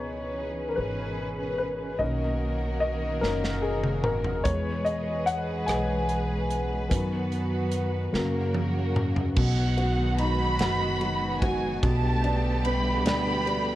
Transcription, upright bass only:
Already playing: C#2
0.78 G#1
1.99 B1
3.23 F#1
4.45 E2
5.68 B1
6.91 F#2
8.14 F#2
9.37 B1
10.60 F#1
11.83 B1
13.06 D2

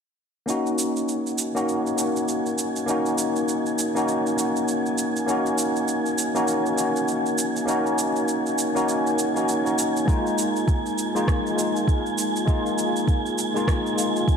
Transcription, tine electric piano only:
0.46 A#3 C#4 D#4 F#4
1.55 A#3 C#4 D#4 F#4
1.96 A#3 C#4 D#4
2.00 F#4
2.86 A#3 C#4 D#4
2.90 F#4
3.95 A#3 C#4 D#4 F#4
4.36 A#3 C#4 D#4
4.40 F#4
5.26 A#3 C#4 D#4 F#4
6.34 A#3 C#4 D#4 F#4
6.76 A#3 C#4 D#4
6.80 F#4
7.66 A#3 C#4 D#4
7.70 F#4
8.75 A#3 C#4 D#4 F#4
9.35 A#3 C#4 D#4 F#4
9.64 A#3 C#4 D#4 F#4
10.05 G#3 A#3 D#4 F4
11.15 G#3 A#3 D#4 F4
11.56 G#3 A#3 D#4
11.60 F4
12.46 G#3 A#3 D#4 F4
13.54 G#3 A#3 D#4 F4
13.96 G#3 A#3 D#4 F4

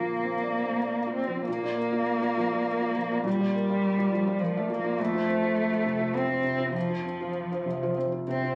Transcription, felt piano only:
Already playing: A#2 F3
0.01 F4
0.23 C4
0.43 D5
0.64 C4
0.85 D5
1.06 F4
1.28 F3
1.48 A#2
1.63 F4 D5
1.77 A#3
1.92 F4 D5
2.22 F4 D5
2.37 F3
2.52 F4 D5
2.67 A#3
2.82 F4 D5
2.96 F3
3.11 F4 D5
3.25 A#2
3.40 F4 D5
3.55 A#3
3.69 F4 D5
3.98 F4 D5
4.12 F3
4.27 F4 D5
4.42 A#3
4.57 F4 D5
4.70 F3
4.84 F4 D5
4.99 F2
5.13 F4 C5
5.28 C4
5.42 F4 C5
5.72 F4 C5
5.85 C3
5.99 F4 C5
6.15 C4
6.29 F4 C5
6.44 C3
6.58 F4 C5
6.73 F2
6.89 F4 C5
7.04 C4
7.20 F4 C5
7.52 F4 C5
7.66 C3
7.83 F4 C5
7.97 C4
8.12 F4 C5
8.28 C3
8.43 F4 C5

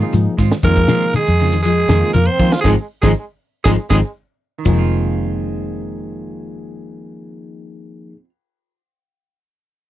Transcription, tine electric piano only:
0.02 F3 A#3 D#4 G#4
0.63 F3 A#3 D#4 G#4
1.90 F3 A#3 D#4 G#4
2.40 F3 A#3 D#4 F4
2.67 G#3 C4 D#4
3.04 G#3 C4 D#4
3.67 G#3 C4 D#4
3.92 G#3 C4 D#4
4.65 F3 A#3 D#4 G#4

